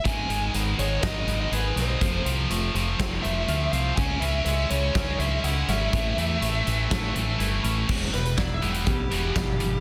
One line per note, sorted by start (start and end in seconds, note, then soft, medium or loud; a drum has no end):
0.04 0.24 G#1 medium
0.04 0.28 G#2 medium
0.04 1.28 G#2 medium
0.04 0.29 D#3 loud
0.04 0.29 G#3 medium
0.04 0.52 G#5 medium
0.04 kick medium
0.04 closed hi-hat medium
0.30 0.48 G#1 medium
0.30 0.53 G#2 medium
0.30 0.54 D#3 medium
0.30 0.78 G#3 medium
0.30 0.54 G#3 medium
0.30 closed hi-hat medium
0.54 0.73 G#1 medium
0.54 0.77 G#2 medium
0.54 0.78 D#3 medium
0.54 0.78 G#3 medium
0.54 1.27 B3 medium
0.54 closed hi-hat medium
0.79 0.97 G#1 medium
0.79 1.01 G#2 medium
0.79 1.02 D#3 medium
0.79 1.02 G#3 medium
0.79 2.02 G#3 medium
0.79 1.02 C#5 medium
0.79 closed hi-hat medium
1.02 1.22 G#1 medium
1.02 1.26 G#2 medium
1.02 1.27 D#3 loud
1.02 1.27 G#3 medium
1.02 1.77 D#4 medium
1.02 1.37 D#5 medium
1.02 kick loud
1.02 snare loud
1.02 closed hi-hat medium
1.27 1.46 G#1 medium
1.27 1.50 G#2 medium
1.27 1.50 D#3 medium
1.27 1.50 G#3 medium
1.27 2.02 B3 medium
1.27 closed hi-hat medium
1.41 1.53 D#5 medium
1.51 1.70 G#1 medium
1.51 1.75 G#2 medium
1.51 1.75 D#3 medium
1.51 1.75 G#3 medium
1.51 2.02 G#4 medium
1.51 1.78 B4 medium
1.51 closed hi-hat medium
1.76 1.95 B1 medium
1.76 2.00 G#2 medium
1.76 2.00 D#3 medium
1.76 2.00 G#3 medium
1.76 2.02 D#4 medium
1.76 2.23 C5 medium
1.76 snare soft
1.76 closed hi-hat medium
2.01 2.20 F1 loud
2.01 2.25 F2 medium
2.01 3.24 F2 medium
2.01 2.25 C3 medium
2.01 2.26 F3 loud
2.01 kick loud
2.01 closed hi-hat medium
2.25 2.44 C2 medium
2.25 2.49 F2 medium
2.25 2.49 C3 medium
2.25 2.73 F3 medium
2.25 2.50 F3 medium
2.25 closed hi-hat medium
2.50 2.69 F1 medium
2.50 2.74 F2 medium
2.50 2.74 C3 medium
2.50 2.75 F3 medium
2.50 3.22 A3 medium
2.50 closed hi-hat medium
2.74 2.93 F1 medium
2.74 2.99 F2 medium
2.74 3.00 C3 medium
2.74 3.97 F3 medium
2.74 3.00 F3 medium
2.74 closed hi-hat medium
2.99 3.18 F1 medium
2.99 3.22 F2 medium
2.99 3.23 C3 medium
2.99 3.24 F3 loud
2.99 3.72 C4 medium
2.99 kick medium
2.99 snare loud
2.99 closed hi-hat medium
3.22 3.43 F1 medium
3.22 3.47 F2 medium
3.22 3.48 C3 medium
3.22 3.48 F3 medium
3.22 3.97 A3 medium
3.22 3.74 E5 medium
3.22 closed hi-hat medium
3.48 3.67 D2 medium
3.48 3.71 F2 medium
3.48 3.71 C3 medium
3.48 3.72 F3 medium
3.48 3.98 F4 medium
3.48 closed hi-hat medium
3.72 3.91 C2 medium
3.72 3.96 F2 medium
3.72 3.96 C3 medium
3.72 3.96 F3 medium
3.72 3.98 C4 medium
3.72 3.96 F5 loud
3.72 closed hi-hat medium
3.96 4.16 C#2 loud
3.96 4.21 C#3 loud
3.96 5.20 C#3 medium
3.96 4.22 G#3 medium
3.96 4.23 C#4 loud
3.96 4.22 G#5 loud
3.96 kick loud
3.96 closed hi-hat medium
4.20 4.40 C#2 medium
4.20 4.45 C#3 medium
4.20 4.71 E3 medium
4.20 4.46 G#3 medium
4.20 4.47 C#4 medium
4.20 4.44 E5 loud
4.20 closed hi-hat medium
4.45 4.64 C#2 medium
4.45 4.70 C#3 medium
4.45 4.71 G#3 medium
4.45 5.18 G#3 medium
4.45 4.72 C#4 medium
4.45 4.70 E5 loud
4.45 closed hi-hat medium
4.70 4.89 C#2 medium
4.70 4.95 C#3 medium
4.70 6.16 E3 medium
4.70 4.95 G#3 loud
4.70 4.95 C#4 loud
4.70 5.19 C#5 medium
4.70 closed hi-hat medium
4.95 5.14 C#2 medium
4.95 5.19 C#3 loud
4.95 5.20 G#3 loud
4.95 5.68 C#4 medium
4.95 5.20 C#4 loud
4.95 kick loud
4.95 snare loud
4.95 closed hi-hat medium
5.19 5.38 C#2 medium
5.19 5.44 C#3 medium
5.19 5.93 G#3 medium
5.19 5.44 G#3 medium
5.19 5.45 C#4 medium
5.19 5.45 E5 medium
5.19 closed hi-hat medium
5.43 5.62 C#2 medium
5.43 5.68 C#3 medium
5.43 5.68 G#3 medium
5.43 5.69 C#4 medium
5.43 7.39 E4 medium
5.43 5.67 F#5 loud
5.43 closed hi-hat medium
5.68 5.87 G#1 medium
5.68 5.92 C#3 medium
5.68 5.92 G#3 medium
5.68 5.93 C#4 medium
5.68 7.36 E5 medium
5.68 snare soft
5.68 closed hi-hat medium
5.92 6.12 A1 loud
5.92 7.15 A2 medium
5.92 6.16 A2 medium
5.92 6.17 E3 loud
5.92 6.17 A3 loud
5.92 kick loud
5.92 closed hi-hat medium
6.17 6.36 E2 medium
6.17 6.40 A2 medium
6.17 6.65 E3 medium
6.17 6.41 E3 medium
6.17 6.41 A3 loud
6.17 closed hi-hat medium
6.41 6.60 A1 medium
6.41 6.64 A2 medium
6.41 6.64 E3 medium
6.41 7.14 A3 medium
6.41 6.65 A3 medium
6.41 closed hi-hat medium
6.65 6.86 A1 medium
6.65 6.89 A2 medium
6.65 6.89 E3 medium
6.65 7.89 E3 medium
6.65 6.90 A3 medium
6.65 closed hi-hat medium
6.90 7.10 A1 medium
6.90 7.13 A2 medium
6.90 7.14 E3 medium
6.90 7.14 A3 loud
6.90 7.62 C#4 medium
6.90 kick loud
6.90 snare loud
6.90 closed hi-hat medium
7.14 7.34 A1 medium
7.14 7.38 A2 medium
7.14 7.38 E3 medium
7.14 7.89 A3 medium
7.14 7.39 A3 medium
7.14 closed hi-hat medium
7.39 7.58 G1 medium
7.39 7.62 A2 medium
7.39 7.62 E3 medium
7.39 7.63 A3 medium
7.39 7.89 E4 medium
7.39 closed hi-hat medium
7.63 7.83 A1 medium
7.63 7.87 A2 medium
7.63 7.87 E3 medium
7.63 7.87 A3 loud
7.63 7.89 C#4 medium
7.63 closed hi-hat medium
7.89 8.10 E1 medium
7.89 8.12 E2 medium
7.89 9.11 E2 medium
7.89 8.12 B2 medium
7.89 8.12 E3 medium
7.89 kick medium
7.89 crash loud
8.13 8.35 E1 medium
8.13 8.35 E2 medium
8.13 8.36 B2 medium
8.13 8.86 G3 medium
8.13 8.39 B4 medium
8.13 snare soft
8.13 closed hi-hat medium
8.25 closed hi-hat medium
8.37 8.59 E1 medium
8.37 8.60 E2 medium
8.37 8.60 B2 medium
8.37 9.60 E4 medium
8.37 8.54 D5 loud
8.37 kick loud
8.37 snare loud
8.37 closed hi-hat medium
8.54 8.71 E5 medium
8.62 8.84 E1 medium
8.62 8.85 E2 medium
8.62 8.86 B2 medium
8.62 8.86 E3 medium
8.62 9.11 B3 medium
8.62 closed hi-hat medium
8.70 8.87 G5 medium
8.74 closed hi-hat medium
8.86 9.08 B1 medium
8.86 9.09 E2 medium
8.86 9.09 B2 medium
8.86 9.59 G3 medium
8.86 9.80 G4 medium
8.86 kick loud
8.86 closed hi-hat medium
9.11 9.32 E1 medium
9.11 9.34 E2 medium
9.11 9.35 B2 medium
9.11 9.35 E3 loud
9.11 9.80 B3 medium
9.11 closed hi-hat medium
9.36 9.78 G1 medium
9.36 9.58 E2 medium
9.36 9.58 B2 medium
9.36 9.80 E3 medium
9.36 kick loud
9.36 snare loud
9.36 closed hi-hat medium
9.60 9.80 E2 medium
9.60 9.80 B2 medium
9.60 9.80 G3 medium
9.60 closed hi-hat medium